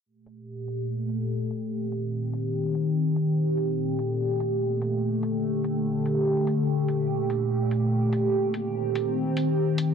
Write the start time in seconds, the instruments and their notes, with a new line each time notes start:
0.06 ambient pad A#2 A3 G4
0.26 closed hi-hat
0.68 closed hi-hat
1.09 closed hi-hat
1.51 closed hi-hat
1.71 ambient pad D#3 C4 G4
1.92 closed hi-hat
2.33 closed hi-hat
2.75 closed hi-hat
3.16 closed hi-hat
3.37 ambient pad A#2 A3
3.57 closed hi-hat
3.99 closed hi-hat
4.40 closed hi-hat
4.82 closed hi-hat
5.02 ambient pad D3 G4
5.23 closed hi-hat
5.64 closed hi-hat
6.06 closed hi-hat
6.47 closed hi-hat
6.68 ambient pad A#2
6.88 closed hi-hat
7.30 closed hi-hat
7.71 closed hi-hat
8.13 closed hi-hat
8.33 ambient pad D#3 C4
8.54 closed hi-hat
8.95 closed hi-hat
9.37 closed hi-hat
9.78 closed hi-hat